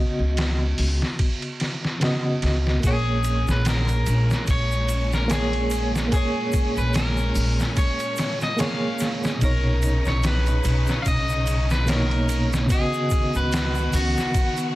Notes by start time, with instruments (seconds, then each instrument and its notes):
Already playing: reed electric piano C#3 B3 F#4 D#5
0.19 upright bass C#2
0.37 snare, ride
0.78 upright bass C#2, open hi-hat
1.02 snare
1.19 kick, ride
1.42 ride
1.60 snare, ride
1.85 snare
2.00 reed electric piano C#3 B3 F#4 D#5, snare, ride
2.42 upright bass C#2, snare, ride
2.67 snare
2.80 upright bass A#1, reed electric piano A#3 G#4, kick, ride, shaker
2.84 string section A#2 G#3 C#4, clean electric guitar G#4, reed electric piano C#5
3.24 ride, shaker
3.48 upright bass A#1, clean electric guitar B4, snare, shaker
3.65 snare, ride, shaker
3.69 clean electric guitar A#4
3.88 ride, shaker
4.06 upright bass A#1, ride, shaker
4.30 snare, shaker
4.47 upright bass A#1, clean electric guitar C#5, kick, ride, shaker
4.71 shaker
4.89 ride, shaker
5.13 clean electric guitar A#4, snare, shaker
5.28 reed electric piano A#3 G#4, snare, ride, shaker
5.32 clean electric guitar G#4, reed electric piano C#5
5.53 ride
5.71 ride, shaker
5.95 snare, shaker
6.08 reed electric piano A#3, ride
6.12 reed electric piano G#4, clean electric guitar G#4, kick, shaker
6.16 reed electric piano C#5
6.52 kick, ride, shaker
6.77 upright bass A#1, clean electric guitar B4, shaker
6.94 clean electric guitar A#4, snare, ride, shaker
7.17 shaker
7.35 upright bass A#1, open hi-hat, shaker
7.60 snare, shaker
7.77 clean electric guitar C#5, kick, ride, shaker
8.00 ride, shaker
8.17 snare, ride, shaker
8.41 clean electric guitar D#5, snare, shaker
8.57 reed electric piano A#3 G#4 C#5, clean electric guitar F5, snare, ride, shaker
8.99 snare, ride, shaker
9.23 snare, shaker
9.37 reed electric piano A#2 B2
9.41 upright bass B1, string section C#3 C#4 D#4, reed electric piano D#4 C#5, clean electric guitar A#4, kick, ride, shaker
9.82 ride, shaker
10.05 upright bass B1, clean electric guitar C#5, snare, shaker
10.23 clean electric guitar B4, snare, ride, shaker
10.47 ride, shaker
10.64 upright bass B1, ride, shaker
10.87 snare, shaker
11.02 upright bass B1, clean electric guitar F5, kick, ride, shaker
11.08 clean electric guitar D#5
11.29 shaker
11.47 ride, shaker
11.70 clean electric guitar B4, snare, shaker
11.86 reed electric piano B2 A#3 D#4 C#5, snare, ride, shaker
11.90 clean electric guitar A#4
12.11 ride
12.29 ride, shaker
12.53 snare, shaker
12.66 reed electric piano C#3 B3, shaker
12.70 string section D#3 B3 F#4, reed electric piano F#4 D#5, clean electric guitar G#4, kick, ride
12.93 shaker
13.10 kick, ride, shaker
13.34 upright bass C#2, clean electric guitar B4, shaker
13.52 snare, ride, shaker
13.75 shaker
13.93 upright bass C#2, clean electric guitar F#4, open hi-hat, shaker
14.17 snare, shaker
14.34 kick, ride, shaker
14.57 ride, shaker